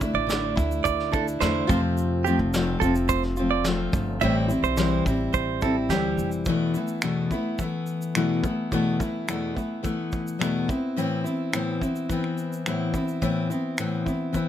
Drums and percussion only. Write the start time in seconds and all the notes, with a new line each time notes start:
0.01 kick, shaker
0.30 snare, shaker
0.57 kick, shaker
0.71 shaker
0.85 kick, shaker
1.00 snare
1.13 kick, shaker
1.28 shaker
1.41 snare, shaker
1.69 kick, shaker
1.98 shaker
2.26 shaker
2.54 snare, shaker
2.82 kick, shaker
2.95 shaker
3.09 kick, shaker
3.23 snare
3.36 shaker
3.64 snare, shaker
3.93 kick, shaker
4.21 kick, shaker
4.50 shaker
4.64 shaker
4.77 snare, shaker
5.06 kick, shaker
5.34 kick, shaker
5.61 kick, shaker
5.90 snare, shaker
6.18 shaker
6.32 shaker
6.45 kick, shaker
6.74 shaker
6.88 shaker
7.02 finger snap, shaker
7.31 kick, shaker
7.59 kick, shaker
7.87 shaker
8.02 shaker
8.15 finger snap, shaker
8.44 kick, shaker
8.72 kick, shaker
9.00 kick, shaker
9.28 finger snap, shaker
9.57 kick, shaker
9.84 kick, shaker
10.12 kick, shaker
10.27 shaker
10.41 finger snap, shaker
10.69 kick, shaker
10.98 shaker
11.26 shaker
11.53 finger snap, shaker
11.81 kick, shaker
11.96 shaker
12.10 kick, shaker
12.24 finger snap
12.38 shaker
12.53 shaker
12.66 finger snap, shaker
12.94 kick, shaker
13.08 shaker
13.22 kick, shaker
13.51 shaker
13.78 finger snap, shaker
14.06 kick, shaker
14.34 kick, shaker